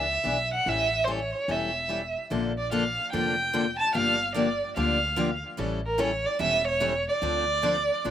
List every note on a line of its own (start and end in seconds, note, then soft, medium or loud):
0.00 0.19 C#2 medium
0.00 0.52 E5 medium
0.24 0.60 B1 medium
0.24 0.35 E3 medium
0.24 0.36 B3 medium
0.24 0.36 D4 medium
0.24 0.36 G#4 medium
0.54 0.70 F#5 medium
0.66 1.32 A1 medium
0.66 0.87 E3 medium
0.66 0.88 G3 medium
0.66 0.88 C#4 medium
0.66 0.88 E4 medium
0.66 0.88 A4 medium
0.66 1.06 E5 loud
1.04 1.18 E3 medium
1.04 1.19 G3 medium
1.04 1.19 C#4 medium
1.04 1.18 E4 medium
1.04 1.13 C5 medium
1.08 1.19 A4 medium
1.08 1.53 C#5 medium
1.48 2.14 E1 medium
1.48 1.69 E3 medium
1.48 1.69 G3 medium
1.48 1.70 C#4 medium
1.48 1.70 E4 medium
1.48 1.70 A4 medium
1.48 2.16 E5 medium
1.89 2.00 E3 medium
1.89 2.00 G3 medium
1.89 2.00 C#4 medium
1.89 2.01 E4 medium
1.89 2.01 A4 medium
2.30 2.96 A#1 medium
2.30 2.51 D3 medium
2.30 2.52 F3 medium
2.30 2.52 A#3 medium
2.30 2.52 D4 medium
2.30 2.52 A4 medium
2.58 2.71 D5 medium
2.71 2.82 D3 medium
2.71 2.83 F3 medium
2.71 2.83 A#3 medium
2.71 2.83 D4 medium
2.71 2.83 A4 medium
2.71 3.11 F5 medium
3.12 3.79 F1 medium
3.12 3.33 D3 medium
3.12 3.34 F3 medium
3.12 3.34 A#3 medium
3.12 3.34 D4 medium
3.12 3.34 A4 medium
3.12 3.75 G5 medium
3.53 3.64 D3 medium
3.53 3.65 F3 medium
3.53 3.65 A#3 medium
3.53 3.65 D4 medium
3.53 3.65 A4 medium
3.79 3.94 A5 medium
3.94 4.61 G1 medium
3.94 4.16 D3 medium
3.94 4.15 F3 medium
3.94 4.16 A#3 medium
3.94 4.16 D4 medium
3.94 4.16 G4 medium
3.94 4.33 F5 loud
4.35 4.47 D3 medium
4.35 4.47 F3 medium
4.35 4.47 A#3 medium
4.35 4.47 D4 medium
4.35 4.47 G4 medium
4.35 4.74 D5 medium
4.76 5.43 D2 medium
4.76 4.98 D3 medium
4.76 4.98 F3 medium
4.76 4.98 A#3 medium
4.76 4.98 D4 medium
4.76 4.98 G4 medium
4.76 5.40 F5 medium
5.17 5.29 D3 medium
5.17 5.29 F3 medium
5.17 5.29 A#3 medium
5.17 5.29 D4 medium
5.17 5.29 G4 medium
5.58 6.24 A1 medium
5.58 5.79 E3 medium
5.58 5.79 G3 medium
5.58 5.79 C#4 medium
5.58 5.80 E4 medium
5.58 5.80 A4 medium
5.86 6.01 A#4 medium
5.98 6.10 E3 medium
5.98 6.10 G3 medium
5.98 6.10 C#4 medium
5.98 6.10 E4 medium
5.98 6.11 A4 medium
5.98 6.28 C#5 medium
6.26 6.41 D5 medium
6.40 7.06 E1 medium
6.40 6.61 E3 medium
6.40 6.61 G3 medium
6.40 6.62 C#4 medium
6.40 6.62 E4 medium
6.40 6.62 A4 medium
6.40 6.65 E5 loud
6.68 7.05 C#5 medium
6.80 6.92 E3 medium
6.80 6.92 G3 medium
6.80 6.93 C#4 medium
6.80 6.93 E4 medium
6.80 6.93 A4 medium
7.09 8.11 D5 medium
7.21 7.88 D2 medium
7.21 7.43 D3 medium
7.21 7.43 F3 medium
7.21 7.44 C4 medium
7.21 7.44 D4 medium
7.21 7.44 A4 medium
7.63 7.75 D3 medium
7.63 7.75 F3 medium
7.63 7.75 C4 medium
7.63 7.75 D4 loud
7.63 7.75 A4 loud
8.04 8.11 A1 medium
8.04 8.11 D3 medium
8.04 8.11 F3 medium
8.04 8.11 C4 medium
8.04 8.11 D4 medium
8.04 8.11 A4 medium